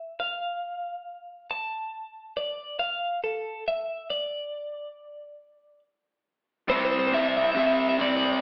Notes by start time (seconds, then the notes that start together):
Already playing: E5
0.20 F5
1.51 A5
2.37 D5
2.79 F5
3.24 A4
3.68 E5
4.10 D5
6.68 C3 G3 C4 C5
6.78 C5
6.85 C5
6.91 C5
6.99 C5
7.07 C5
7.12 C3 G3 C4 E5
7.21 E5
7.29 E5
7.37 E5
7.44 E5
7.52 C3 E5
7.56 G3 C4 E5
7.66 E5
7.74 E5
7.80 E5
7.89 E5
7.98 C3 G3 C4 D5
8.10 D5
8.16 D5
8.25 D5
8.33 D5